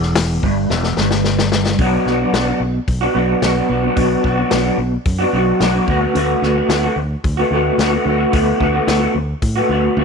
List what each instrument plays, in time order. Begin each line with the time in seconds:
Already playing: fingered electric bass E1, clean electric guitar E2
0.02 snare
0.15 snare, open hi-hat
0.43 fingered electric bass G1, clean electric guitar G2, kick
0.70 fingered electric bass E1, clean electric guitar E2, snare
0.83 snare
0.97 fingered electric bass G1, clean electric guitar G2, snare
1.11 snare
1.24 snare
1.39 snare
1.52 snare
1.66 snare
1.79 fingered electric bass B1, clean electric guitar B2 F#3 B3 D4 F#4, kick, open hi-hat
2.05 fingered electric bass B1, clean electric guitar F#3 B3 D4 F#4, snare
2.20 clean electric guitar B3 D4 F#4
2.33 fingered electric bass B1, clean electric guitar B2 F#3 B3 D4 F#4, snare, open hi-hat
2.46 clean electric guitar B3 D4 F#4
2.60 fingered electric bass B1, muted clean electric guitar stroke
2.88 fingered electric bass B1, kick, open hi-hat
3.01 clean electric guitar B3 D4 F#4
3.14 fingered electric bass B1, clean electric guitar F#3 B3 D4 F#4
3.41 fingered electric bass B1, clean electric guitar B2 F#3 B3 D4 F#4, snare, open hi-hat
3.55 clean electric guitar B3 D4 F#4
3.68 fingered electric bass B1, clean electric guitar F#3 B3 D4 F#4
3.82 clean electric guitar B3 D4 F#4
3.95 fingered electric bass B1, clean electric guitar B2 F#3 B3 D4 F#4, kick, open hi-hat
4.22 fingered electric bass B1, clean electric guitar F#3 B3 D4 F#4, kick
4.36 clean electric guitar B3 D4 F#4
4.49 fingered electric bass B1, clean electric guitar B2 F#3 B3 D4 F#4, snare, open hi-hat
4.64 clean electric guitar B3 D4 F#4
4.78 fingered electric bass B1, muted clean electric guitar stroke
5.05 fingered electric bass F#2, kick, open hi-hat
5.19 clean electric guitar B3 D4 F#4
5.32 fingered electric bass B1, clean electric guitar F#3 B3 D4 F#4
5.59 fingered electric bass B1, clean electric guitar B2 F#3 B3 D4 F#4, snare, open hi-hat
5.73 clean electric guitar B3 D4 F#4
5.87 fingered electric bass D2, clean electric guitar D3 A3 B3 F#4, kick
6.01 clean electric guitar A3 B3 F#4
6.14 fingered electric bass D2, clean electric guitar D3 A3 B3 F#4, open hi-hat
6.42 fingered electric bass D2, clean electric guitar D3 A3 B3 F#4, snare
6.55 clean electric guitar A3 B3 F#4
6.69 fingered electric bass D2, clean electric guitar D3 A3 B3 F#4, snare, open hi-hat
6.84 clean electric guitar A3 B3 F#4
6.96 fingered electric bass D2, muted clean electric guitar stroke
7.24 fingered electric bass D2, kick, open hi-hat
7.37 clean electric guitar A3 B3 F#4
7.51 fingered electric bass D2, clean electric guitar D3 A3 B3 F#4
7.78 fingered electric bass D2, clean electric guitar D3 A3 B3 F#4, snare, open hi-hat
7.91 clean electric guitar A3 B3 F#4
8.05 fingered electric bass D2, clean electric guitar D3 A3 B3 F#4
8.18 clean electric guitar A3 B3 F#4
8.31 fingered electric bass D2, clean electric guitar D3 A3 B3 F#4, kick, open hi-hat
8.59 fingered electric bass D2, clean electric guitar D3 A3 B3 F#4, kick
8.73 clean electric guitar A3 B3 F#4
8.87 fingered electric bass D2, clean electric guitar D3 A3 B3 F#4, snare, open hi-hat
8.99 clean electric guitar A3 B3 F#4
9.14 fingered electric bass D2, muted clean electric guitar stroke
9.42 fingered electric bass A2, kick, open hi-hat
9.55 clean electric guitar A3 B3 F#4
9.69 fingered electric bass D2, clean electric guitar D3 A3 B3 F#4
9.97 fingered electric bass D2, clean electric guitar D3 A3 B3 F#4, high tom